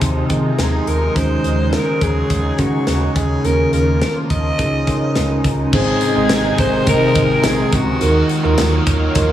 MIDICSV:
0, 0, Header, 1, 7, 480
1, 0, Start_track
1, 0, Tempo, 571429
1, 974, Time_signature, 4, 2, 24, 8
1, 7831, End_track
2, 0, Start_track
2, 0, Title_t, "Alto saxophone"
2, 0, Program_c, 0, 65
2, 495, Note_on_c, 0, 68, 76
2, 736, Note_on_c, 0, 70, 83
2, 748, Note_off_c, 0, 68, 0
2, 973, Note_on_c, 0, 72, 92
2, 986, Note_off_c, 0, 70, 0
2, 1461, Note_on_c, 0, 70, 82
2, 1474, Note_off_c, 0, 72, 0
2, 1698, Note_on_c, 0, 68, 94
2, 1711, Note_off_c, 0, 70, 0
2, 2183, Note_on_c, 0, 66, 81
2, 2195, Note_off_c, 0, 68, 0
2, 2414, Note_off_c, 0, 66, 0
2, 2419, Note_on_c, 0, 66, 83
2, 2661, Note_on_c, 0, 68, 87
2, 2674, Note_off_c, 0, 66, 0
2, 2898, Note_on_c, 0, 70, 99
2, 2911, Note_off_c, 0, 68, 0
2, 3128, Note_off_c, 0, 70, 0
2, 3133, Note_on_c, 0, 70, 83
2, 3357, Note_off_c, 0, 70, 0
2, 3375, Note_on_c, 0, 70, 84
2, 3483, Note_off_c, 0, 70, 0
2, 3616, Note_on_c, 0, 75, 111
2, 4541, Note_off_c, 0, 75, 0
2, 4826, Note_on_c, 0, 68, 104
2, 5506, Note_off_c, 0, 68, 0
2, 5541, Note_on_c, 0, 72, 107
2, 5761, Note_off_c, 0, 72, 0
2, 5784, Note_on_c, 0, 70, 113
2, 6267, Note_on_c, 0, 68, 100
2, 6280, Note_off_c, 0, 70, 0
2, 6509, Note_on_c, 0, 66, 88
2, 6522, Note_off_c, 0, 68, 0
2, 7221, Note_off_c, 0, 66, 0
2, 7831, End_track
3, 0, Start_track
3, 0, Title_t, "Tine electric piano"
3, 0, Program_c, 1, 4
3, 0, Control_c, 1, 64, 127
3, 0, Note_on_c, 1, 51, 59
3, 0, Note_on_c, 1, 60, 69
3, 0, Note_on_c, 1, 63, 61
3, 0, Note_on_c, 1, 65, 60
3, 0, Note_on_c, 1, 68, 77
3, 243, Note_off_c, 1, 60, 0
3, 243, Note_on_c, 1, 60, 86
3, 250, Note_off_c, 1, 63, 0
3, 250, Note_off_c, 1, 65, 0
3, 250, Note_on_c, 1, 63, 77
3, 250, Note_on_c, 1, 65, 73
3, 254, Note_off_c, 1, 68, 0
3, 254, Note_on_c, 1, 68, 89
3, 697, Note_off_c, 1, 60, 0
3, 700, Note_off_c, 1, 63, 0
3, 701, Note_off_c, 1, 65, 0
3, 702, Note_off_c, 1, 68, 0
3, 967, Note_on_c, 1, 61, 65
3, 970, Note_on_c, 1, 63, 64
3, 972, Note_off_c, 1, 51, 0
3, 972, Note_on_c, 1, 51, 60
3, 972, Note_on_c, 1, 66, 61
3, 976, Note_on_c, 1, 68, 78
3, 986, Control_c, 1, 64, 0
3, 1114, Control_c, 1, 64, 127
3, 1568, Note_off_c, 1, 61, 0
3, 1570, Note_off_c, 1, 63, 0
3, 1571, Note_off_c, 1, 66, 0
3, 1573, Note_off_c, 1, 68, 0
3, 1659, Note_off_c, 1, 51, 0
3, 2168, Note_on_c, 1, 61, 69
3, 2169, Note_on_c, 1, 63, 60
3, 2175, Note_on_c, 1, 66, 63
3, 2176, Note_on_c, 1, 68, 77
3, 2619, Note_off_c, 1, 61, 0
3, 2620, Note_off_c, 1, 63, 0
3, 2623, Note_off_c, 1, 66, 0
3, 2623, Note_off_c, 1, 68, 0
3, 2890, Note_on_c, 1, 58, 70
3, 2893, Note_on_c, 1, 61, 64
3, 2896, Note_on_c, 1, 51, 57
3, 2899, Note_on_c, 1, 65, 60
3, 2900, Note_on_c, 1, 70, 72
3, 2906, Control_c, 1, 64, 0
3, 3029, Control_c, 1, 64, 127
3, 3490, Note_off_c, 1, 58, 0
3, 3492, Note_off_c, 1, 61, 0
3, 3495, Note_off_c, 1, 65, 0
3, 3495, Note_off_c, 1, 70, 0
3, 3581, Note_off_c, 1, 51, 0
3, 3850, Note_on_c, 1, 61, 70
3, 3853, Note_on_c, 1, 63, 65
3, 3855, Note_on_c, 1, 49, 60
3, 3857, Note_on_c, 1, 65, 69
3, 3862, Note_on_c, 1, 68, 76
3, 3866, Control_c, 1, 64, 0
3, 4036, Control_c, 1, 64, 127
3, 4044, Note_off_c, 1, 61, 0
3, 4046, Note_off_c, 1, 63, 0
3, 4048, Note_off_c, 1, 65, 0
3, 4050, Note_off_c, 1, 68, 0
3, 4091, Note_on_c, 1, 61, 65
3, 4092, Note_on_c, 1, 63, 61
3, 4096, Note_on_c, 1, 65, 63
3, 4101, Note_on_c, 1, 70, 71
3, 4541, Note_off_c, 1, 49, 0
3, 4541, Note_off_c, 1, 61, 0
3, 4542, Note_off_c, 1, 63, 0
3, 4544, Note_off_c, 1, 65, 0
3, 4546, Note_off_c, 1, 70, 0
3, 4815, Note_on_c, 1, 60, 76
3, 4817, Note_on_c, 1, 44, 68
3, 4818, Note_on_c, 1, 63, 66
3, 4819, Note_on_c, 1, 68, 69
3, 4822, Note_on_c, 1, 72, 84
3, 4825, Control_c, 1, 64, 0
3, 4978, Control_c, 1, 64, 127
3, 5039, Note_off_c, 1, 60, 0
3, 5040, Note_off_c, 1, 63, 0
3, 5041, Note_off_c, 1, 68, 0
3, 5042, Note_off_c, 1, 72, 0
3, 5172, Note_on_c, 1, 60, 78
3, 5175, Note_on_c, 1, 63, 66
3, 5177, Note_on_c, 1, 68, 72
3, 5179, Note_on_c, 1, 75, 84
3, 5502, Note_off_c, 1, 44, 0
3, 5547, Note_off_c, 1, 60, 0
3, 5548, Note_off_c, 1, 63, 0
3, 5549, Note_off_c, 1, 68, 0
3, 5550, Note_off_c, 1, 75, 0
3, 5770, Note_on_c, 1, 60, 73
3, 5774, Note_on_c, 1, 63, 68
3, 5774, Note_on_c, 1, 68, 68
3, 5780, Note_on_c, 1, 72, 81
3, 6370, Note_off_c, 1, 60, 0
3, 6372, Note_off_c, 1, 63, 0
3, 6372, Note_off_c, 1, 68, 0
3, 6375, Note_off_c, 1, 72, 0
3, 6725, Note_on_c, 1, 63, 76
3, 6728, Note_on_c, 1, 65, 66
3, 6730, Note_on_c, 1, 51, 63
3, 6731, Note_on_c, 1, 66, 65
3, 6735, Note_on_c, 1, 70, 85
3, 6743, Control_c, 1, 64, 0
3, 6893, Control_c, 1, 64, 127
3, 6954, Note_off_c, 1, 63, 0
3, 6955, Note_off_c, 1, 65, 0
3, 6957, Note_off_c, 1, 66, 0
3, 6958, Note_off_c, 1, 70, 0
3, 7081, Note_on_c, 1, 63, 94
3, 7086, Note_on_c, 1, 65, 87
3, 7087, Note_on_c, 1, 66, 87
3, 7092, Note_on_c, 1, 70, 100
3, 7418, Note_off_c, 1, 51, 0
3, 7461, Note_off_c, 1, 63, 0
3, 7464, Note_off_c, 1, 65, 0
3, 7464, Note_off_c, 1, 66, 0
3, 7467, Note_off_c, 1, 70, 0
3, 7684, Note_on_c, 1, 63, 91
3, 7688, Note_on_c, 1, 65, 84
3, 7690, Note_on_c, 1, 66, 83
3, 7695, Note_on_c, 1, 70, 97
3, 7831, Note_off_c, 1, 63, 0
3, 7831, Note_off_c, 1, 65, 0
3, 7831, Note_off_c, 1, 66, 0
3, 7831, Note_off_c, 1, 70, 0
3, 7831, End_track
4, 0, Start_track
4, 0, Title_t, "Analog synth pad"
4, 0, Program_c, 2, 89
4, 0, Note_on_c, 2, 48, 82
4, 0, Note_on_c, 2, 53, 69
4, 0, Note_on_c, 2, 56, 69
4, 0, Note_on_c, 2, 63, 87
4, 951, Note_off_c, 2, 48, 0
4, 952, Note_off_c, 2, 53, 0
4, 971, Note_on_c, 2, 54, 71
4, 972, Note_on_c, 2, 49, 79
4, 2858, Note_off_c, 2, 56, 0
4, 2859, Note_off_c, 2, 63, 0
4, 2873, Note_off_c, 2, 54, 0
4, 2896, Note_on_c, 2, 53, 71
4, 2897, Note_on_c, 2, 58, 69
4, 2897, Note_on_c, 2, 65, 82
4, 3824, Note_off_c, 2, 49, 0
4, 3846, Note_off_c, 2, 58, 0
4, 3846, Note_off_c, 2, 65, 0
4, 3868, Note_on_c, 2, 49, 78
4, 3869, Note_on_c, 2, 63, 84
4, 3871, Note_on_c, 2, 56, 67
4, 4796, Note_off_c, 2, 53, 0
4, 4810, Note_off_c, 2, 56, 0
4, 4812, Note_off_c, 2, 49, 0
4, 4812, Note_off_c, 2, 63, 0
4, 4819, Note_on_c, 2, 48, 83
4, 4820, Note_on_c, 2, 51, 78
4, 4821, Note_on_c, 2, 56, 74
4, 4821, Note_on_c, 2, 63, 95
4, 6717, Note_off_c, 2, 48, 0
4, 6718, Note_off_c, 2, 56, 0
4, 6718, Note_off_c, 2, 63, 0
4, 6733, Note_on_c, 2, 54, 75
4, 6733, Note_on_c, 2, 58, 75
4, 6735, Note_on_c, 2, 77, 94
4, 7831, Note_off_c, 2, 51, 0
4, 7831, Note_off_c, 2, 54, 0
4, 7831, Note_off_c, 2, 58, 0
4, 7831, Note_off_c, 2, 77, 0
4, 7831, End_track
5, 0, Start_track
5, 0, Title_t, "Overdriven electric guitar"
5, 0, Program_c, 3, 29
5, 4810, Note_on_c, 3, 44, 75
5, 4816, Note_on_c, 3, 51, 84
5, 4820, Note_on_c, 3, 56, 83
5, 5280, Note_off_c, 3, 44, 0
5, 5290, Note_on_c, 3, 44, 52
5, 5294, Note_off_c, 3, 51, 0
5, 5297, Note_off_c, 3, 56, 0
5, 5298, Note_on_c, 3, 51, 55
5, 5306, Note_on_c, 3, 56, 59
5, 5755, Note_off_c, 3, 44, 0
5, 5765, Note_on_c, 3, 44, 78
5, 5777, Note_off_c, 3, 51, 0
5, 5780, Note_off_c, 3, 56, 0
5, 5780, Note_on_c, 3, 51, 83
5, 5791, Note_on_c, 3, 56, 84
5, 6729, Note_off_c, 3, 51, 0
5, 6730, Note_off_c, 3, 44, 0
5, 6733, Note_on_c, 3, 51, 71
5, 6735, Note_off_c, 3, 56, 0
5, 6739, Note_on_c, 3, 58, 75
5, 6743, Note_on_c, 3, 63, 89
5, 7199, Note_off_c, 3, 51, 0
5, 7210, Note_on_c, 3, 51, 67
5, 7216, Note_off_c, 3, 58, 0
5, 7216, Note_off_c, 3, 63, 0
5, 7219, Note_on_c, 3, 58, 66
5, 7227, Note_on_c, 3, 63, 75
5, 7439, Note_off_c, 3, 63, 0
5, 7449, Note_on_c, 3, 63, 63
5, 7452, Note_off_c, 3, 51, 0
5, 7455, Note_off_c, 3, 58, 0
5, 7465, Note_on_c, 3, 58, 49
5, 7681, Note_on_c, 3, 51, 85
5, 7684, Note_off_c, 3, 58, 0
5, 7691, Note_off_c, 3, 63, 0
5, 7694, Note_on_c, 3, 58, 95
5, 7706, Note_on_c, 3, 63, 95
5, 7831, Note_off_c, 3, 51, 0
5, 7831, Note_off_c, 3, 58, 0
5, 7831, Note_off_c, 3, 63, 0
5, 7831, End_track
6, 0, Start_track
6, 0, Title_t, "Analog synth bass"
6, 0, Program_c, 4, 38
6, 14, Note_on_c, 4, 39, 105
6, 186, Note_off_c, 4, 39, 0
6, 253, Note_on_c, 4, 51, 96
6, 426, Note_off_c, 4, 51, 0
6, 489, Note_on_c, 4, 39, 98
6, 664, Note_off_c, 4, 39, 0
6, 731, Note_on_c, 4, 39, 86
6, 905, Note_off_c, 4, 39, 0
6, 975, Note_on_c, 4, 39, 108
6, 1147, Note_off_c, 4, 39, 0
6, 1214, Note_on_c, 4, 39, 100
6, 1473, Note_off_c, 4, 39, 0
6, 1692, Note_on_c, 4, 39, 93
6, 1865, Note_off_c, 4, 39, 0
6, 1934, Note_on_c, 4, 39, 97
6, 2107, Note_off_c, 4, 39, 0
6, 2174, Note_on_c, 4, 51, 91
6, 2347, Note_off_c, 4, 51, 0
6, 2412, Note_on_c, 4, 39, 101
6, 2586, Note_off_c, 4, 39, 0
6, 2653, Note_on_c, 4, 39, 89
6, 2826, Note_off_c, 4, 39, 0
6, 2890, Note_on_c, 4, 39, 105
6, 3064, Note_off_c, 4, 39, 0
6, 3128, Note_on_c, 4, 39, 92
6, 3389, Note_off_c, 4, 39, 0
6, 3614, Note_on_c, 4, 39, 95
6, 3787, Note_off_c, 4, 39, 0
6, 3856, Note_on_c, 4, 37, 100
6, 4093, Note_on_c, 4, 49, 93
6, 4106, Note_off_c, 4, 37, 0
6, 4334, Note_on_c, 4, 37, 99
6, 4347, Note_off_c, 4, 49, 0
6, 4507, Note_off_c, 4, 37, 0
6, 4574, Note_on_c, 4, 37, 99
6, 4747, Note_off_c, 4, 37, 0
6, 4814, Note_on_c, 4, 32, 115
6, 4986, Note_off_c, 4, 32, 0
6, 5174, Note_on_c, 4, 32, 96
6, 5261, Note_off_c, 4, 32, 0
6, 5290, Note_on_c, 4, 32, 98
6, 5464, Note_off_c, 4, 32, 0
6, 5531, Note_on_c, 4, 32, 109
6, 5705, Note_off_c, 4, 32, 0
6, 5773, Note_on_c, 4, 32, 109
6, 5946, Note_off_c, 4, 32, 0
6, 6011, Note_on_c, 4, 32, 97
6, 6185, Note_off_c, 4, 32, 0
6, 6253, Note_on_c, 4, 34, 93
6, 6426, Note_off_c, 4, 34, 0
6, 6490, Note_on_c, 4, 37, 94
6, 6664, Note_off_c, 4, 37, 0
6, 6734, Note_on_c, 4, 39, 100
6, 6907, Note_off_c, 4, 39, 0
6, 7094, Note_on_c, 4, 39, 96
6, 7180, Note_off_c, 4, 39, 0
6, 7216, Note_on_c, 4, 39, 100
6, 7388, Note_off_c, 4, 39, 0
6, 7448, Note_on_c, 4, 39, 97
6, 7623, Note_off_c, 4, 39, 0
6, 7691, Note_on_c, 4, 39, 115
6, 7831, Note_off_c, 4, 39, 0
6, 7831, End_track
7, 0, Start_track
7, 0, Title_t, "Drums"
7, 11, Note_on_c, 9, 42, 92
7, 13, Note_on_c, 9, 36, 87
7, 95, Note_off_c, 9, 42, 0
7, 97, Note_off_c, 9, 36, 0
7, 249, Note_on_c, 9, 42, 70
7, 252, Note_on_c, 9, 36, 82
7, 333, Note_off_c, 9, 42, 0
7, 336, Note_off_c, 9, 36, 0
7, 492, Note_on_c, 9, 38, 86
7, 494, Note_on_c, 9, 42, 87
7, 576, Note_off_c, 9, 38, 0
7, 578, Note_off_c, 9, 42, 0
7, 733, Note_on_c, 9, 42, 70
7, 817, Note_off_c, 9, 42, 0
7, 974, Note_on_c, 9, 36, 98
7, 975, Note_on_c, 9, 42, 76
7, 1058, Note_off_c, 9, 36, 0
7, 1059, Note_off_c, 9, 42, 0
7, 1212, Note_on_c, 9, 42, 73
7, 1296, Note_off_c, 9, 42, 0
7, 1450, Note_on_c, 9, 42, 68
7, 1451, Note_on_c, 9, 38, 100
7, 1534, Note_off_c, 9, 42, 0
7, 1535, Note_off_c, 9, 38, 0
7, 1692, Note_on_c, 9, 36, 88
7, 1692, Note_on_c, 9, 42, 69
7, 1776, Note_off_c, 9, 36, 0
7, 1776, Note_off_c, 9, 42, 0
7, 1931, Note_on_c, 9, 42, 95
7, 1934, Note_on_c, 9, 36, 89
7, 2015, Note_off_c, 9, 42, 0
7, 2018, Note_off_c, 9, 36, 0
7, 2170, Note_on_c, 9, 42, 70
7, 2173, Note_on_c, 9, 36, 84
7, 2254, Note_off_c, 9, 42, 0
7, 2257, Note_off_c, 9, 36, 0
7, 2410, Note_on_c, 9, 38, 88
7, 2412, Note_on_c, 9, 42, 85
7, 2494, Note_off_c, 9, 38, 0
7, 2496, Note_off_c, 9, 42, 0
7, 2652, Note_on_c, 9, 36, 88
7, 2652, Note_on_c, 9, 42, 75
7, 2736, Note_off_c, 9, 36, 0
7, 2736, Note_off_c, 9, 42, 0
7, 2894, Note_on_c, 9, 42, 73
7, 2978, Note_off_c, 9, 42, 0
7, 3133, Note_on_c, 9, 42, 73
7, 3217, Note_off_c, 9, 42, 0
7, 3372, Note_on_c, 9, 42, 72
7, 3373, Note_on_c, 9, 38, 104
7, 3456, Note_off_c, 9, 42, 0
7, 3457, Note_off_c, 9, 38, 0
7, 3613, Note_on_c, 9, 42, 64
7, 3614, Note_on_c, 9, 36, 88
7, 3697, Note_off_c, 9, 42, 0
7, 3698, Note_off_c, 9, 36, 0
7, 3853, Note_on_c, 9, 42, 94
7, 3855, Note_on_c, 9, 36, 91
7, 3937, Note_off_c, 9, 42, 0
7, 3939, Note_off_c, 9, 36, 0
7, 4092, Note_on_c, 9, 42, 71
7, 4094, Note_on_c, 9, 36, 86
7, 4176, Note_off_c, 9, 42, 0
7, 4178, Note_off_c, 9, 36, 0
7, 4330, Note_on_c, 9, 38, 95
7, 4332, Note_on_c, 9, 42, 85
7, 4414, Note_off_c, 9, 38, 0
7, 4416, Note_off_c, 9, 42, 0
7, 4573, Note_on_c, 9, 36, 89
7, 4573, Note_on_c, 9, 42, 72
7, 4657, Note_off_c, 9, 36, 0
7, 4657, Note_off_c, 9, 42, 0
7, 4812, Note_on_c, 9, 49, 93
7, 4813, Note_on_c, 9, 36, 110
7, 4896, Note_off_c, 9, 49, 0
7, 4897, Note_off_c, 9, 36, 0
7, 5047, Note_on_c, 9, 42, 80
7, 5131, Note_off_c, 9, 42, 0
7, 5287, Note_on_c, 9, 42, 78
7, 5288, Note_on_c, 9, 38, 119
7, 5289, Note_on_c, 9, 54, 65
7, 5294, Note_on_c, 9, 39, 99
7, 5371, Note_off_c, 9, 42, 0
7, 5372, Note_off_c, 9, 38, 0
7, 5373, Note_off_c, 9, 54, 0
7, 5378, Note_off_c, 9, 39, 0
7, 5529, Note_on_c, 9, 42, 75
7, 5531, Note_on_c, 9, 36, 98
7, 5613, Note_off_c, 9, 42, 0
7, 5615, Note_off_c, 9, 36, 0
7, 5768, Note_on_c, 9, 42, 99
7, 5771, Note_on_c, 9, 36, 101
7, 5852, Note_off_c, 9, 42, 0
7, 5855, Note_off_c, 9, 36, 0
7, 6007, Note_on_c, 9, 42, 77
7, 6011, Note_on_c, 9, 36, 98
7, 6091, Note_off_c, 9, 42, 0
7, 6095, Note_off_c, 9, 36, 0
7, 6246, Note_on_c, 9, 38, 105
7, 6246, Note_on_c, 9, 54, 64
7, 6248, Note_on_c, 9, 42, 93
7, 6254, Note_on_c, 9, 39, 91
7, 6330, Note_off_c, 9, 38, 0
7, 6330, Note_off_c, 9, 54, 0
7, 6332, Note_off_c, 9, 42, 0
7, 6338, Note_off_c, 9, 39, 0
7, 6488, Note_on_c, 9, 42, 82
7, 6489, Note_on_c, 9, 36, 101
7, 6572, Note_off_c, 9, 42, 0
7, 6573, Note_off_c, 9, 36, 0
7, 6727, Note_on_c, 9, 42, 81
7, 6811, Note_off_c, 9, 42, 0
7, 6966, Note_on_c, 9, 42, 79
7, 7050, Note_off_c, 9, 42, 0
7, 7206, Note_on_c, 9, 42, 77
7, 7207, Note_on_c, 9, 38, 119
7, 7209, Note_on_c, 9, 54, 66
7, 7212, Note_on_c, 9, 39, 103
7, 7290, Note_off_c, 9, 42, 0
7, 7291, Note_off_c, 9, 38, 0
7, 7293, Note_off_c, 9, 54, 0
7, 7296, Note_off_c, 9, 39, 0
7, 7447, Note_on_c, 9, 42, 80
7, 7449, Note_on_c, 9, 36, 99
7, 7531, Note_off_c, 9, 42, 0
7, 7533, Note_off_c, 9, 36, 0
7, 7687, Note_on_c, 9, 42, 107
7, 7691, Note_on_c, 9, 36, 98
7, 7771, Note_off_c, 9, 42, 0
7, 7775, Note_off_c, 9, 36, 0
7, 7831, End_track
0, 0, End_of_file